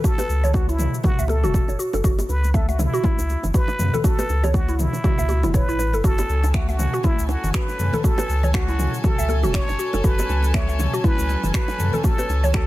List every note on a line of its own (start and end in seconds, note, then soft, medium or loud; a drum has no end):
0.04 0.17 F#4 medium
0.04 0.54 A4 loud
0.04 kick loud
0.04 shaker medium
0.18 0.28 B4 medium
0.18 high bongo medium
0.18 low bongo medium
0.18 muted conga soft
0.18 shaker medium
0.29 0.88 C#2 loud
0.29 shaker medium
0.44 0.49 C#5 loud
0.44 muted conga soft
0.44 low conga medium
0.44 shaker medium
0.53 0.67 F#4 medium
0.53 0.68 F#4 medium
0.53 kick loud
0.53 low bongo medium
0.53 high conga medium
0.53 shaker soft
0.68 1.02 E4 medium
0.68 0.78 E4 medium
0.68 muted conga medium
0.68 shaker soft
0.78 mid tom loud
0.78 low bongo medium
0.78 shaker medium
0.94 shaker soft
1.03 1.17 F#4 medium
1.03 1.31 F#4 medium
1.03 kick loud
1.03 mid tom medium
1.03 low bongo medium
1.03 muted conga soft
1.03 shaker soft
1.18 1.45 C#2 loud
1.18 1.28 E5 loud
1.18 high conga medium
1.18 shaker medium
1.28 1.43 A4 loud
1.28 1.79 A4 medium
1.28 high bongo medium
1.28 muted conga soft
1.28 shaker soft
1.43 1.61 E1 medium
1.43 1.53 F#4 loud
1.43 mid tom medium
1.43 low bongo medium
1.43 high conga medium
1.43 shaker soft
1.54 1.67 F#4 medium
1.54 kick loud
1.54 muted conga soft
1.54 shaker medium
1.68 1.76 F#1 medium
1.68 1.78 C#5 medium
1.68 low bongo medium
1.68 shaker soft
1.79 1.93 F#4 loud
1.79 shaker medium
1.93 2.01 F#1 loud
1.93 1.99 A4 medium
1.93 low bongo medium
1.93 muted conga medium
1.93 shaker medium
2.04 2.24 F#1 medium
2.04 2.17 F#4 loud
2.04 kick loud
2.04 shaker medium
2.19 high bongo loud
2.19 muted conga soft
2.19 shaker medium
2.29 2.88 C#2 loud
2.29 2.56 B4 medium
2.29 low bongo medium
2.29 shaker medium
2.44 muted conga soft
2.44 shaker soft
2.54 2.68 A4 medium
2.54 2.67 E5 medium
2.54 kick loud
2.54 low bongo medium
2.54 high conga medium
2.54 shaker soft
2.69 2.81 F#4 medium
2.69 2.78 E5 medium
2.69 muted conga medium
2.69 shaker soft
2.79 3.54 E4 medium
2.79 mid tom medium
2.79 low bongo medium
2.79 shaker medium
2.94 3.03 F#4 loud
2.94 shaker soft
3.04 3.17 E4 loud
3.04 kick loud
3.04 muted conga soft
3.04 high conga loud
3.04 shaker soft
3.18 3.36 C#2 medium
3.18 low bongo medium
3.18 shaker medium
3.29 muted conga medium
3.29 shaker soft
3.43 3.51 F#1 loud
3.43 low bongo medium
3.43 low conga medium
3.43 shaker soft
3.54 3.67 F#4 medium
3.54 4.06 B4 loud
3.54 kick loud
3.54 muted conga soft
3.54 shaker medium
3.68 low bongo medium
3.68 shaker soft
3.79 3.90 F#2 medium
3.79 mid tom medium
3.79 high conga medium
3.79 shaker medium
3.94 3.99 A4 loud
3.94 muted conga soft
3.94 low conga loud
3.94 shaker soft
4.04 4.17 F#4 medium
4.04 4.56 A4 loud
4.04 kick loud
4.04 low bongo medium
4.04 high conga medium
4.04 shaker medium
4.19 4.28 B4 medium
4.19 high bongo loud
4.19 muted conga medium
4.19 shaker medium
4.29 4.88 C#2 loud
4.29 low bongo medium
4.29 shaker medium
4.43 4.49 C#5 loud
4.43 high bongo medium
4.43 muted conga soft
4.43 low conga medium
4.43 shaker medium
4.54 4.67 F#4 medium
4.54 4.81 F#4 medium
4.54 kick loud
4.54 low bongo medium
4.54 high conga medium
4.54 shaker medium
4.68 4.78 E4 medium
4.68 muted conga medium
4.68 shaker soft
4.79 5.56 E4 loud
4.79 mid tom medium
4.79 low conga medium
4.79 shaker medium
4.93 low bongo medium
4.93 shaker soft
5.04 5.17 F#4 medium
5.04 kick loud
5.04 mid tom medium
5.04 muted conga soft
5.04 shaker soft
5.18 5.45 C#2 loud
5.18 5.28 E5 loud
5.18 low bongo medium
5.18 high conga medium
5.18 shaker medium
5.29 5.42 F#4 medium
5.29 high bongo medium
5.29 muted conga medium
5.29 shaker soft
5.43 5.61 E1 medium
5.43 5.49 E4 medium
5.43 mid tom medium
5.43 low bongo medium
5.43 high conga medium
5.43 shaker soft
5.54 6.06 B4 loud
5.54 5.67 C#5 medium
5.54 kick loud
5.54 muted conga soft
5.54 shaker medium
5.68 5.95 A1 loud
5.68 5.79 E4 loud
5.68 shaker soft
5.79 5.92 B4 medium
5.79 low bongo medium
5.79 shaker medium
5.93 6.01 F#1 medium
5.93 5.99 A4 medium
5.93 muted conga medium
5.93 shaker soft
6.04 6.24 F#1 loud
6.04 12.67 F#3 medium
6.04 12.67 C#4 medium
6.04 6.17 F#4 loud
6.04 12.67 A4 medium
6.04 6.56 A4 loud
6.04 12.67 G#5 medium
6.04 kick loud
6.04 shaker medium
6.18 high bongo loud
6.18 low bongo medium
6.18 muted conga medium
6.18 shaker medium
6.29 6.88 C#2 loud
6.29 shaker medium
6.43 low bongo medium
6.43 muted conga soft
6.43 shaker medium
6.54 6.68 F#4 medium
6.54 6.67 E5 medium
6.54 finger snap loud
6.54 kick loud
6.54 high conga medium
6.54 shaker medium
6.69 7.02 F#4 loud
6.69 6.78 E5 medium
6.69 muted conga soft
6.69 shaker soft
6.79 mid tom medium
6.79 low bongo medium
6.79 shaker loud
6.94 7.03 F#4 loud
6.94 shaker medium
7.03 7.17 E4 loud
7.03 7.31 E4 medium
7.03 kick loud
7.03 low bongo medium
7.03 muted conga soft
7.03 high conga loud
7.03 shaker medium
7.18 7.36 C#2 medium
7.18 shaker medium
7.29 7.56 F#4 loud
7.29 low bongo medium
7.29 muted conga medium
7.29 shaker medium
7.43 7.51 F#1 loud
7.43 low conga loud
7.43 shaker medium
7.53 7.67 F#4 medium
7.53 8.06 B4 loud
7.53 finger snap loud
7.53 kick loud
7.53 muted conga soft
7.53 shaker medium
7.68 low bongo medium
7.68 shaker medium
7.79 7.90 F#2 medium
7.79 mid tom medium
7.79 high conga medium
7.79 shaker medium
7.93 7.99 A4 loud
7.93 low bongo medium
7.93 muted conga soft
7.93 low conga loud
7.93 shaker medium
8.03 8.17 F#4 medium
8.03 8.54 A4 loud
8.03 kick loud
8.03 high conga medium
8.03 shaker medium
8.18 8.28 B4 medium
8.18 high bongo loud
8.18 low bongo loud
8.18 muted conga soft
8.18 shaker medium
8.29 8.87 C#2 loud
8.29 shaker medium
8.43 8.49 C#5 loud
8.43 muted conga soft
8.43 low conga medium
8.43 shaker medium
8.53 8.67 F#4 medium
8.53 9.06 F#4 loud
8.53 finger snap loud
8.53 kick loud
8.53 low bongo medium
8.53 high conga medium
8.53 shaker medium
8.68 8.78 E4 medium
8.68 muted conga medium
8.68 shaker medium
8.79 mid tom medium
8.79 low bongo medium
8.79 shaker medium
8.94 shaker medium
9.04 9.17 F#4 medium
9.04 9.39 A4 loud
9.04 kick loud
9.04 mid tom medium
9.04 low bongo medium
9.04 muted conga soft
9.04 shaker medium
9.18 9.45 C#2 loud
9.18 9.28 E5 loud
9.18 high conga medium
9.18 shaker loud
9.29 9.43 A4 loud
9.29 high bongo medium
9.29 muted conga medium
9.29 shaker medium
9.43 9.61 E1 loud
9.43 9.53 F#4 loud
9.43 mid tom medium
9.43 low bongo medium
9.43 high conga medium
9.43 shaker medium
9.54 9.67 F#4 medium
9.54 10.06 C#5 loud
9.54 finger snap loud
9.54 kick loud
9.54 shaker medium
9.69 9.76 F#1 medium
9.69 9.78 C#5 medium
9.69 low bongo medium
9.69 shaker medium
9.79 9.93 F#4 loud
9.79 shaker loud
9.93 10.01 F#1 loud
9.93 9.99 A4 medium
9.93 low bongo medium
9.93 muted conga soft
9.93 shaker medium
10.04 10.24 F#1 loud
10.04 10.17 F#4 loud
10.04 10.56 B4 loud
10.04 kick loud
10.04 shaker loud
10.18 high bongo loud
10.18 muted conga soft
10.18 shaker loud
10.29 10.87 C#2 loud
10.29 low bongo medium
10.29 shaker medium
10.43 muted conga soft
10.43 shaker medium
10.54 11.06 C#5 loud
10.54 10.67 E5 medium
10.54 finger snap loud
10.54 kick loud
10.54 low bongo medium
10.54 high conga loud
10.54 shaker medium
10.69 10.78 E5 medium
10.69 muted conga soft
10.69 shaker medium
10.79 mid tom medium
10.79 low bongo medium
10.79 shaker loud
10.94 11.03 F#4 medium
10.94 shaker medium
11.04 11.17 E4 loud
11.04 11.53 B4 loud
11.04 kick loud
11.04 muted conga soft
11.04 high conga loud
11.04 shaker medium
11.18 11.36 C#2 medium
11.18 low bongo medium
11.18 shaker medium
11.29 muted conga medium
11.29 shaker medium
11.43 11.51 F#1 loud
11.43 low bongo medium
11.43 low conga medium
11.43 shaker medium
11.54 11.67 F#4 medium
11.54 12.01 B4 loud
11.54 finger snap loud
11.54 kick loud
11.54 muted conga soft
11.54 shaker medium
11.68 low bongo medium
11.68 shaker medium
11.78 11.90 F#2 medium
11.78 mid tom medium
11.78 high conga medium
11.78 shaker loud
11.93 11.99 A4 loud
11.93 muted conga medium
11.93 low conga loud
11.93 shaker medium
12.03 12.17 F#4 medium
12.03 12.51 A4 loud
12.03 kick loud
12.03 low bongo medium
12.03 high conga medium
12.03 shaker loud
12.18 12.28 B4 medium
12.18 high bongo loud
12.18 muted conga medium
12.18 shaker medium
12.29 12.67 C#2 loud
12.29 low bongo medium
12.29 shaker medium
12.44 12.49 C#5 loud
12.44 muted conga soft
12.44 low conga medium
12.44 shaker medium
12.54 12.67 F#4 medium
12.54 12.67 A4 loud
12.54 finger snap loud
12.54 kick loud
12.54 low bongo loud
12.54 high conga medium
12.54 shaker medium